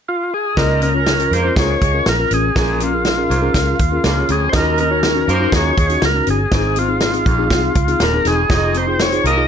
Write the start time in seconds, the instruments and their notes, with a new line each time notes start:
0.08 tonewheel organ F4
0.34 tonewheel organ G#4
0.57 fingered electric bass C#2, baritone saxophone A#2, tine electric piano C#3 C#4 F4 A#4, horn section D#4 D#5, tonewheel organ A#4, kick, snare, closed hi-hat
0.82 clean electric guitar C#4, tonewheel organ A#4, closed hi-hat
0.94 tine electric piano C#4 F4 A#4, horn section C#4 C#5
1.06 horn section C#4 C#5, clean electric guitar D#4, snare, closed hi-hat
1.19 tine electric piano C#4 F4 A#4, closed hi-hat
1.31 fingered electric bass F2, baritone saxophone G#2, horn section A#3 A#4, tonewheel organ C5, closed hi-hat
1.44 tine electric piano C#4 F4 A#4
1.56 fingered electric bass C#2, baritone saxophone G#2, horn section G#3 G#4, clean electric guitar F4, tonewheel organ C#5, kick, snare, closed hi-hat
1.81 fingered electric bass C#2, horn section G#3 G#4, kick, closed hi-hat
1.94 tine electric piano C#4 F4 A#4
2.06 fingered electric bass A#1, tonewheel organ A#4, snare, closed hi-hat
2.19 tine electric piano C#4 F4 A#4
2.31 fingered electric bass A1, clean electric guitar C#4, tonewheel organ G#4, closed hi-hat
2.55 fingered electric bass A#1, tine electric piano A#2 C#4 G#4 A#4, baritone saxophone A#2, tonewheel organ G#4, kick, snare, closed hi-hat
2.80 clean electric guitar C#4, tonewheel organ F4, closed hi-hat
2.93 tine electric piano C#4 G#4 A#4
3.05 clean electric guitar D#4, snare, closed hi-hat
3.17 tine electric piano C#4 G#4 A#4
3.30 fingered electric bass C2, baritone saxophone G#2, closed hi-hat
3.42 tine electric piano C#4 G#4 A#4
3.54 fingered electric bass C#2, clean electric guitar F4, kick, snare, closed hi-hat
3.79 fingered electric bass D#2, kick, closed hi-hat
3.92 tine electric piano C#4 G#4 A#4
4.04 fingered electric bass C#2, baritone saxophone D#2, tonewheel organ F4, snare, closed hi-hat
4.17 tine electric piano C#4 G#4 C#5
4.29 fingered electric bass D2, baritone saxophone F2, clean electric guitar C#4, tonewheel organ G#4, closed hi-hat
4.49 horn section D#4 D#5, tonewheel organ C5, snare, closed hi-hat
4.53 fingered electric bass D#2, baritone saxophone D#2, tine electric piano D#3 C#4 D#4 F#4, tonewheel organ A#4, kick
4.78 clean electric guitar C#4, tonewheel organ A#4, closed hi-hat
4.90 horn section C#4 C#5, tine electric piano C#4 D#4 F#4
5.02 horn section C#4 C#5, clean electric guitar D#4, snare, closed hi-hat
5.15 tine electric piano C#4 D#4 F#4
5.27 fingered electric bass F#2, baritone saxophone F#2, horn section A#3 A#4, tonewheel organ C5, closed hi-hat
5.40 tine electric piano C#4 D#4 F#4
5.52 fingered electric bass D#2, baritone saxophone F#2, horn section G#3 G#4, clean electric guitar F4, tonewheel organ C#5, kick, snare, closed hi-hat
5.77 fingered electric bass D#2, horn section G#3 G#4, kick, closed hi-hat
5.89 tine electric piano C#4 D#4 F#4, closed hi-hat
6.02 fingered electric bass C#2, tonewheel organ A#4, snare, closed hi-hat
6.14 tine electric piano C#4 D#4 F#4
6.27 fingered electric bass G1, clean electric guitar C#4, tonewheel organ G#4, closed hi-hat
6.51 fingered electric bass G#1, tine electric piano G#2 C4 D#4 G#4, baritone saxophone G#2, tonewheel organ G#4, kick, snare, closed hi-hat
6.76 clean electric guitar C4, tonewheel organ F4, closed hi-hat
6.88 tine electric piano C4 D#4 G#4
7.00 clean electric guitar D#4, snare, closed hi-hat
7.13 tine electric piano C4 D#4 G#4, closed hi-hat
7.26 fingered electric bass A#1, baritone saxophone F2, kick, closed hi-hat
7.38 tine electric piano C4 D#4 G#4
7.50 fingered electric bass C2, clean electric guitar F4, kick, snare, closed hi-hat
7.75 fingered electric bass C#2, kick, closed hi-hat
7.87 tine electric piano C4 D#4 G#4, closed hi-hat
8.00 fingered electric bass D#1, baritone saxophone D#2, tonewheel organ A#4, snare, closed hi-hat
8.13 tine electric piano C4 D#4 G#4
8.25 fingered electric bass E1, baritone saxophone F2, clean electric guitar D#4, tonewheel organ G#4, snare, closed hi-hat
8.50 fingered electric bass F1, baritone saxophone F2, horn section D#4 D#5, tine electric piano D#4 F4 G#4, kick, snare, closed hi-hat
8.74 clean electric guitar C4, tonewheel organ C5, closed hi-hat
8.87 horn section C4 C5, tine electric piano D#4 F4 G#4
8.99 horn section C4 C5, clean electric guitar D#4, tonewheel organ C#5, snare, closed hi-hat
9.12 tine electric piano D#4 F4 G#4, closed hi-hat
9.24 fingered electric bass C2, baritone saxophone D#2, horn section A#3 A#4, tonewheel organ D#5, closed hi-hat
9.36 tine electric piano D#4 F4 G#4